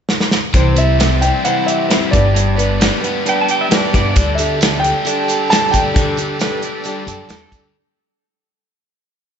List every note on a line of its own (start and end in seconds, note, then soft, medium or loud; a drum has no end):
0.09 snare medium
0.20 snare medium
0.31 snare medium
0.54 1.29 C2 medium
0.54 1.68 C3 medium
0.54 0.77 C3 medium
0.54 0.76 E3 medium
0.54 0.75 G3 medium
0.54 0.75 C4 medium
0.54 0.74 E4 medium
0.54 0.73 C5 medium
0.54 0.78 C5 medium
0.54 kick loud
0.54 closed hi-hat medium
0.74 1.22 G3 medium
0.74 0.97 G3 soft
0.74 0.97 C4 soft
0.74 0.98 E4 soft
0.74 0.98 C5 medium
0.74 1.24 E5 loud
0.74 closed hi-hat medium
0.98 2.13 E3 medium
0.98 1.21 G3 medium
0.98 1.22 C4 medium
0.98 1.22 E4 medium
0.98 1.22 C5 medium
0.98 snare loud
0.98 closed hi-hat medium
1.21 2.57 G3 medium
1.21 1.44 C4 soft
1.21 1.45 E4 soft
1.21 1.45 C5 soft
1.21 1.43 G5 medium
1.21 closed hi-hat medium
1.25 1.44 G3 soft
1.44 1.90 C3 medium
1.44 1.90 E3 medium
1.44 1.88 G3 medium
1.44 1.88 C4 medium
1.44 1.89 E4 medium
1.44 1.89 C5 medium
1.44 1.68 F#5 loud
1.44 closed hi-hat medium
1.66 3.49 G4 medium
1.66 2.14 E5 medium
1.66 closed hi-hat medium
1.88 2.12 G3 medium
1.88 2.12 C4 medium
1.88 2.13 E4 medium
1.88 2.12 E4 medium
1.88 2.11 C5 medium
1.88 snare loud
1.88 closed hi-hat medium
2.11 2.88 G1 medium
2.11 2.34 G2 medium
2.11 2.79 G3 medium
2.11 2.60 D4 medium
2.11 2.58 G4 medium
2.11 2.57 B4 medium
2.11 2.54 D5 medium
2.11 kick medium
2.11 closed hi-hat medium
2.35 3.49 G2 medium
2.35 closed hi-hat medium
2.55 3.03 B3 medium
2.55 2.80 G4 soft
2.55 2.81 B4 medium
2.55 3.43 D5 medium
2.55 closed hi-hat medium
2.60 2.79 D4 soft
2.80 3.03 G3 soft
2.80 4.16 G3 medium
2.80 3.03 D4 medium
2.80 3.02 G4 medium
2.80 3.01 B4 medium
2.80 snare loud
2.80 closed hi-hat medium
3.02 3.93 B3 medium
3.02 3.24 D4 soft
3.02 3.25 G4 soft
3.02 3.25 B4 soft
3.02 closed hi-hat medium
3.25 3.69 G3 medium
3.25 3.70 D4 medium
3.25 3.71 D4 medium
3.25 3.71 G4 medium
3.25 3.70 B4 medium
3.25 3.39 G5 medium
3.25 closed hi-hat medium
3.41 3.51 A5 medium
3.48 5.29 G4 medium
3.48 3.61 G5 medium
3.48 closed hi-hat medium
3.61 3.72 E5 medium
3.69 3.93 G3 medium
3.69 3.94 D4 medium
3.69 5.06 D4 medium
3.69 3.93 G4 medium
3.69 3.91 B4 medium
3.69 3.94 D5 medium
3.69 snare loud
3.69 closed hi-hat medium
3.93 4.12 G1 medium
3.93 4.17 B3 medium
3.93 4.15 D4 soft
3.93 4.15 G4 soft
3.93 4.16 B4 medium
3.93 4.17 D5 medium
3.93 kick medium
3.93 closed hi-hat medium
4.14 4.91 D2 loud
4.14 4.38 D3 medium
4.14 4.61 D3 medium
4.14 4.39 G3 medium
4.14 7.70 D4 medium
4.14 4.39 D4 medium
4.14 7.70 G4 medium
4.14 4.38 G4 medium
4.14 7.71 A4 medium
4.14 4.37 A4 medium
4.14 4.38 D5 medium
4.14 kick loud
4.14 closed hi-hat loud
4.14 tambourine soft
4.35 4.60 G4 soft
4.35 4.60 A4 medium
4.35 4.79 E5 medium
4.35 closed hi-hat medium
4.35 tambourine medium
4.40 4.85 G3 medium
4.40 4.59 D4 soft
4.60 5.97 D3 medium
4.60 5.05 G3 medium
4.60 5.04 D4 soft
4.60 5.05 G4 medium
4.60 5.05 A4 medium
4.60 snare loud
4.60 closed hi-hat medium
4.60 tambourine medium
4.80 5.23 G5 loud
4.84 5.75 G3 medium
4.84 closed hi-hat medium
5.04 5.93 D3 medium
5.04 5.50 G3 medium
5.04 5.51 D4 medium
5.04 5.51 G4 medium
5.04 5.52 A4 medium
5.04 closed hi-hat medium
5.04 tambourine medium
5.28 6.41 A4 medium
5.28 closed hi-hat medium
5.28 tambourine medium
5.50 5.93 G3 medium
5.50 5.94 D4 medium
5.50 6.64 D4 medium
5.50 5.94 G4 medium
5.50 5.94 A4 medium
5.50 5.71 A5 loud
5.50 snare loud
5.50 closed hi-hat loud
5.50 tambourine medium
5.71 6.47 D3 medium
5.71 7.25 G5 loud
5.71 kick medium
5.71 closed hi-hat medium
5.71 tambourine medium
5.75 6.19 G3 medium
5.93 6.17 D3 medium
5.93 6.17 G3 medium
5.93 6.17 D4 medium
5.93 6.17 G4 medium
5.93 6.16 A4 medium
5.93 kick loud
5.93 closed hi-hat loud
5.97 6.41 D3 medium
6.17 6.64 G3 medium
6.17 6.39 D4 medium
6.17 6.40 G4 medium
6.17 6.40 A4 soft
6.17 closed hi-hat medium
6.17 tambourine medium
6.39 7.53 D3 medium
6.39 6.85 G3 medium
6.39 6.85 D4 medium
6.39 6.86 G4 medium
6.39 6.85 A4 medium
6.39 6.63 B4 loud
6.39 snare loud
6.39 closed hi-hat medium
6.39 tambourine medium
6.62 7.52 G3 medium
6.62 7.29 D5 medium
6.62 closed hi-hat medium
6.62 tambourine soft
6.84 7.30 D3 medium
6.84 7.28 G3 loud
6.84 7.28 D4 medium
6.84 7.30 D4 medium
6.84 7.29 G4 medium
6.84 7.30 A4 medium
6.84 closed hi-hat medium
6.84 tambourine medium
7.07 7.27 F#2 medium
7.07 7.75 A4 medium
7.07 closed hi-hat medium
7.07 tambourine medium
7.28 7.49 E2 medium
7.28 7.74 G3 medium
7.28 7.74 D4 medium
7.28 7.75 D4 medium
7.28 7.75 G4 medium
7.28 7.75 A4 medium
7.28 snare loud
7.28 closed hi-hat loud
7.28 tambourine medium
7.33 7.53 A4 medium
7.52 7.72 D2 medium
7.52 7.75 G3 medium
7.52 kick medium
7.52 closed hi-hat medium
7.52 tambourine medium